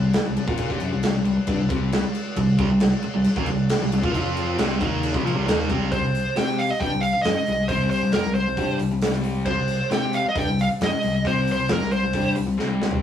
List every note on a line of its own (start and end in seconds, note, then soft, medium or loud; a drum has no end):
0.00 0.15 C2 medium
0.00 0.11 C3 medium
0.00 0.11 G3 medium
0.13 snare loud
0.13 crash medium
0.26 0.38 C2 medium
0.26 0.36 C3 medium
0.26 0.36 G3 medium
0.37 0.47 C2 medium
0.37 0.48 C3 medium
0.37 0.47 G3 medium
0.37 crash medium
0.47 0.69 A#2 medium
0.47 0.70 A#3 medium
0.47 0.70 F4 loud
0.47 0.70 A#4 loud
0.47 kick loud
0.58 kick medium
0.58 crash medium
0.70 0.81 C3 loud
0.70 0.81 C4 medium
0.70 0.82 G4 loud
0.70 kick medium
0.80 0.92 F#2 medium
0.80 0.92 F#3 loud
0.80 0.92 C#4 loud
0.80 crash medium
0.92 1.04 C2 medium
0.92 1.03 C3 medium
0.92 1.04 G3 medium
1.03 1.15 C2 medium
1.03 1.13 C3 medium
1.03 1.13 G3 medium
1.03 snare loud
1.03 crash medium
1.14 1.27 C2 medium
1.14 1.23 C3 medium
1.14 1.24 G3 medium
1.25 1.37 C2 medium
1.25 1.35 C3 medium
1.25 1.37 G3 medium
1.25 crash medium
1.36 muted overdriven electric guitar stroke medium
1.36 muted picked electric bass stroke soft
1.47 1.59 G2 loud
1.47 1.58 G3 loud
1.47 1.58 D4 loud
1.47 kick loud
1.47 crash medium
1.59 1.70 C2 medium
1.59 1.68 C3 medium
1.59 1.68 G3 medium
1.69 2.02 C2 loud
1.69 2.03 C3 loud
1.69 2.02 G3 medium
1.69 2.03 C4 loud
1.69 kick loud
1.69 crash medium
1.92 snare loud
1.92 crash medium
2.15 crash medium
2.36 2.58 C2 medium
2.36 2.54 C3 medium
2.36 2.55 G3 medium
2.36 kick medium
2.36 crash medium
2.58 2.70 C2 medium
2.58 2.69 C3 medium
2.58 2.69 G3 loud
2.58 kick loud
2.58 crash medium
2.70 2.92 C2 medium
2.70 2.88 C3 medium
2.70 2.88 G3 medium
2.80 snare loud
2.80 crash medium
3.02 muted overdriven electric guitar stroke medium
3.02 muted picked electric bass stroke soft
3.02 crash medium
3.15 3.26 C2 medium
3.15 3.25 C3 medium
3.15 3.26 G3 medium
3.24 muted overdriven electric guitar stroke medium
3.24 muted picked electric bass stroke soft
3.24 crash medium
3.36 3.47 D#2 medium
3.36 3.47 D#3 medium
3.36 3.47 A#3 medium
3.36 kick loud
3.46 3.69 C2 medium
3.46 3.66 C3 medium
3.46 3.66 G3 medium
3.46 crash medium
3.69 snare loud
3.69 crash medium
3.81 3.91 C2 medium
3.81 3.91 C3 medium
3.81 3.92 G3 medium
3.92 4.03 C2 medium
3.92 4.04 C3 medium
3.92 4.01 G3 medium
3.92 crash medium
4.01 4.13 A#2 medium
4.01 4.13 A#3 medium
4.01 4.12 F4 medium
4.01 kick loud
4.13 4.56 F2 medium
4.13 4.57 F3 loud
4.13 4.57 C4 loud
4.13 4.58 F4 loud
4.13 kick medium
4.13 crash medium
4.37 crash medium
4.57 4.79 C2 loud
4.57 4.79 C3 loud
4.57 4.80 G3 loud
4.57 4.80 C4 loud
4.57 snare loud
4.57 crash medium
4.80 5.12 D#2 medium
4.80 5.13 D#3 medium
4.80 5.14 A#3 loud
4.80 5.14 D#4 medium
4.80 kick loud
4.80 crash medium
5.03 crash medium
5.13 5.25 C2 loud
5.13 5.23 C3 medium
5.13 5.24 G3 medium
5.13 kick loud
5.24 5.36 A#1 medium
5.24 5.33 A#2 medium
5.24 5.34 F3 medium
5.24 crash medium
5.34 5.47 C2 loud
5.34 5.44 C3 medium
5.34 5.46 G3 medium
5.45 5.68 D#3 medium
5.45 5.69 A#3 loud
5.45 5.69 D#4 loud
5.45 crash medium
5.49 5.69 D#2 loud
5.49 snare loud
5.69 5.90 C2 loud
5.69 5.90 C3 medium
5.69 5.91 G3 medium
5.69 5.92 C4 loud
5.69 kick loud
5.69 crash medium
5.91 6.03 C2 medium
5.91 6.02 C3 loud
5.91 6.02 G3 medium
5.91 6.38 C5 medium
5.91 kick loud
5.91 open hi-hat medium
6.03 6.25 C2 medium
6.03 6.21 C3 medium
6.03 6.21 G3 medium
6.15 open hi-hat medium
6.36 6.68 C3 medium
6.36 6.69 C4 medium
6.36 6.69 G4 medium
6.36 6.69 C5 loud
6.36 6.60 G5 loud
6.36 snare loud
6.36 open hi-hat medium
6.59 6.70 F5 medium
6.59 open hi-hat medium
6.70 6.82 D#5 medium
6.70 muted overdriven electric guitar stroke soft
6.70 muted picked electric bass stroke soft
6.80 6.91 G2 medium
6.80 6.92 G3 medium
6.80 6.92 D4 medium
6.80 7.01 G5 loud
6.80 kick loud
6.80 open hi-hat medium
6.92 7.13 C2 medium
6.92 7.11 C3 medium
6.92 7.11 G3 medium
7.01 7.22 F5 medium
7.01 open hi-hat medium
7.15 muted overdriven electric guitar stroke medium
7.15 muted picked electric bass stroke soft
7.22 7.36 F#2 loud
7.22 7.36 F#3 medium
7.22 7.36 C#4 medium
7.22 7.70 D#5 medium
7.22 snare loud
7.22 open hi-hat medium
7.37 muted overdriven electric guitar stroke medium
7.37 muted picked electric bass stroke soft
7.46 7.69 C2 medium
7.46 7.66 C3 medium
7.46 7.66 G3 medium
7.46 open hi-hat medium
7.68 8.01 C2 medium
7.68 8.01 C3 loud
7.68 8.02 G3 medium
7.68 8.04 C4 loud
7.68 7.89 C5 medium
7.68 kick medium
7.68 open hi-hat medium
7.90 8.13 C5 medium
7.90 open hi-hat medium
8.03 8.14 C2 medium
8.03 8.13 C3 medium
8.03 8.14 G3 medium
8.12 8.24 F2 medium
8.12 8.24 F3 medium
8.12 8.24 C4 loud
8.12 8.34 A#4 medium
8.12 snare loud
8.12 open hi-hat medium
8.24 8.46 C2 medium
8.24 8.43 C3 medium
8.24 8.43 G3 medium
8.35 8.77 C5 medium
8.35 open hi-hat medium
8.47 8.57 C2 medium
8.47 8.59 C3 medium
8.47 8.57 G3 medium
8.57 8.78 G2 medium
8.57 8.79 G3 medium
8.57 8.80 D4 medium
8.57 8.80 G4 medium
8.57 kick medium
8.57 open hi-hat medium
8.79 8.91 C2 medium
8.79 8.90 C3 medium
8.79 8.91 G3 medium
8.79 open hi-hat medium
8.91 9.01 C2 medium
8.91 9.01 C3 medium
8.91 9.02 G3 medium
9.02 9.44 C2 loud
9.02 9.45 C3 loud
9.02 9.46 G3 loud
9.02 9.47 C4 loud
9.02 snare loud
9.02 open hi-hat medium
9.24 open hi-hat medium
9.46 9.57 C2 medium
9.46 9.57 C3 loud
9.46 9.57 G3 loud
9.46 9.88 C5 loud
9.46 kick medium
9.46 crash medium
9.57 9.79 C2 medium
9.57 9.76 C3 medium
9.57 9.77 G3 medium
9.68 open hi-hat medium
9.90 10.23 C3 medium
9.90 10.24 C4 loud
9.90 10.25 G4 loud
9.90 10.25 C5 medium
9.90 10.16 G5 loud
9.90 snare loud
9.90 open hi-hat medium
10.13 10.25 F5 medium
10.13 open hi-hat medium
10.24 muted overdriven electric guitar stroke medium
10.24 muted picked electric bass stroke soft
10.29 10.39 D#5 medium
10.35 10.47 G2 medium
10.35 10.47 G3 loud
10.35 10.47 D4 loud
10.35 10.61 G5 loud
10.35 kick loud
10.35 open hi-hat medium
10.48 10.69 C2 medium
10.48 10.66 C3 medium
10.48 10.66 G3 medium
10.59 10.67 F5 medium
10.59 open hi-hat medium
10.70 muted picked electric bass stroke soft
10.70 muted overdriven electric guitar stroke medium
10.81 10.91 F#2 medium
10.81 10.92 F#3 medium
10.81 10.92 C#4 loud
10.81 11.28 D#5 medium
10.81 snare loud
10.81 open hi-hat medium
10.93 muted overdriven electric guitar stroke medium
10.93 muted picked electric bass stroke soft
11.03 11.24 C2 medium
11.03 11.21 C3 medium
11.03 11.22 G3 medium
11.03 open hi-hat medium
11.25 11.56 C2 loud
11.25 11.56 C3 loud
11.25 11.56 G3 loud
11.25 11.59 C4 loud
11.25 11.49 C5 loud
11.25 kick medium
11.25 open hi-hat medium
11.48 open hi-hat medium
11.52 11.71 C5 medium
11.58 11.69 C2 medium
11.58 11.69 C3 medium
11.58 11.69 G3 medium
11.69 11.80 F2 medium
11.69 11.80 F3 medium
11.69 11.80 C4 medium
11.69 snare loud
11.69 open hi-hat medium
11.73 11.92 A#4 medium
11.81 12.02 C2 medium
11.81 11.99 C3 medium
11.81 11.99 G3 medium
11.91 12.34 C5 medium
11.91 open hi-hat medium
12.03 12.13 C2 medium
12.03 12.15 C3 medium
12.03 12.13 G3 medium
12.13 12.35 G2 medium
12.13 12.35 G3 medium
12.13 12.37 D4 loud
12.13 12.37 G4 loud
12.13 kick loud
12.13 open hi-hat medium
12.36 12.47 C2 medium
12.36 12.45 C3 medium
12.36 12.45 G3 medium
12.36 open hi-hat medium
12.47 12.59 C2 medium
12.47 12.56 C3 medium
12.47 12.57 G3 medium
12.57 13.01 C2 medium
12.57 13.01 C3 medium
12.57 13.02 G3 medium
12.57 13.02 C4 loud
12.57 snare medium
12.82 snare medium
12.91 floor tom medium